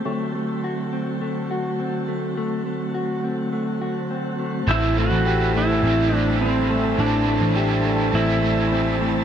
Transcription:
Already playing: C4 G4
0.05 D3 F#3 A3 C4 F#4
0.35 A3
0.64 F#4
0.92 C4
1.21 A3
1.51 F#4
1.80 C4
2.08 A3
2.37 A3
2.66 A3
2.94 F#4
3.24 C4
3.53 A3
3.82 F#4
4.11 C4
4.39 A3
4.67 A1 A2 E3 G3 C4 E4 A4 C5 A5
4.97 A3 F#4
5.11 A1
5.24 E3 G3 C4 G4
5.29 E4
5.55 A3 E4
5.81 A1 E3 G3 C4
5.88 C4 E4
6.12 A3 D4
6.41 C4
6.70 A3
6.98 A1 A2 E3 G3 C4 D4 E4 A5
7.27 A3
7.41 A1
7.55 E3 G3 C4 G4
7.60 E4
7.85 A3
8.11 A1 E3 G3 C4 E4
8.17 C4 E4
8.42 A3
8.72 C4
9.00 A3

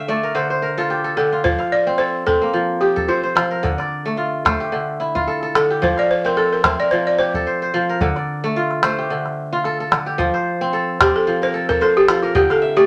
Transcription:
Already playing: D3 G4 E5 F5 G5
0.08 A3 D5
0.23 A#4
0.35 D3 C5
0.50 C5
0.62 A#4
0.78 F4 A4
0.90 G4
1.04 A4
1.17 D3 G4 A4
1.32 F4
1.44 F3 C5, calabash thump
1.59 F5, calabash click
1.72 D5
1.87 C4
1.98 A4 C5
2.26 C4 A4, calabash thump
2.42 A#3
2.54 F3
2.81 G4
2.96 A4, calabash thump
3.08 F4 C5
3.23 C5
3.35 F3, calabash click
3.51 A#4
3.63 D3, calabash thump
3.78 D5, calabash click
4.06 A3
4.17 F4
4.45 A3 C5, calabash thump, calabash click
4.60 G4
4.72 D3
5.00 E4
5.15 F4, calabash thump
5.28 A4
5.43 A4
5.55 D3 A4, calabash click
5.70 G4
5.82 F3 C5, calabash thump
5.97 D5 F5, calabash click
6.11 C5
6.25 C4 A#4
6.37 A4
6.53 A#4
6.64 C4 C5 E5, calabash thump, calabash click
6.79 A#4 D5
6.91 F3 C5
7.07 D5
7.18 G4 C5
7.34 A4, calabash thump
7.47 C5
7.62 C5
7.74 F3
7.89 A#4
8.01 D3, calabash thump
8.16 D5, calabash click
8.44 A3
8.56 F4
8.71 calabash click
8.83 A3 C5, calabash click
8.98 G4
9.10 D3
9.26 calabash click
9.53 F4
9.64 A4, calabash click
9.80 A4
9.91 D3, calabash click
10.06 G4
10.18 F3, calabash thump
10.34 C5, calabash click
10.61 C4
10.73 A4
11.00 C4 G4 D5, calabash thump, calabash click
11.16 A4
11.27 F3
11.42 A#4 C5
11.54 A4
11.69 A4 A#4, calabash thump
11.81 A4 C5
11.97 G4 A4
12.08 F3, calabash click
12.23 F4 A#4
12.35 D3 G4 G5, calabash thump
12.50 A4 F5, calabash click
12.62 E5
12.76 A3 G4 D5

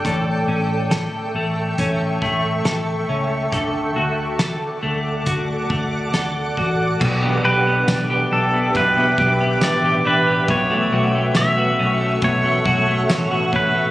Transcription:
Already playing: A3 D4 A4 G5
0.04 A1 A2 A4 E5 C#6, kick, closed hi-hat
0.47 A1 C#4
0.91 A4, snare, closed hi-hat
1.34 A1 A3
1.78 A1 C#4, kick, closed hi-hat
2.22 A1 A3, kick
2.65 A1 A4, snare, closed hi-hat
3.09 C#2 C#4
3.52 D2 D3 A4 D5 F#5 D6, kick, closed hi-hat
3.96 D2 F#4
4.39 A4, snare, closed hi-hat
4.83 D2 A3
5.26 D2 F#4, kick, closed hi-hat
5.70 D2 A3, kick
6.13 D2 A4, snare, closed hi-hat
6.57 A1 F#4, kick
7.00 B1 B2 E3 B3 D4 G4 B4 E5 G5 D6, kick, crash
7.22 B3
7.44 B1 B3 D4 G4 B4
7.67 B3
7.86 B1 B2 E3 B3 D4 G4, snare, ride, tambourine
8.10 G4
8.30 B1 D4 G4 A4
8.35 B3
8.54 B3
8.75 B1 B2 E3 B3 D4 B4, kick, ride
8.79 G4
8.97 B3
9.17 B1 D4 G4, kick
9.22 B3
9.41 B3
9.61 A1 B2 E3 B3 D4 D5, snare, ride, tambourine
9.65 G4
9.85 G4
10.04 A1 D4 G4 B4
10.08 B3
10.27 B3
10.48 B1 B2 E3 A3 C#4 F#4 A4 C#5 F#5 C#6, kick, ride
10.70 A3
10.92 B1 C#4 F#4
10.96 A3
11.15 A3
11.35 B1 B2 E3 A3 C#4 F#4 E5, snare, ride, tambourine
11.58 F#4
11.79 B1 A3 C#4 F#4
12.01 A3
12.22 B1 B2 E3 A3 C#4 F#4 C#5, kick, ride
12.44 A3
12.65 B1 C#4 F#4, kick
12.69 A3
12.88 A3
13.08 A1 B2 E3 A3 C#4 F#4, snare, ride, tambourine
13.31 F#4
13.52 A1 C#4 F#4 B4, kick
13.56 A3
13.74 A3

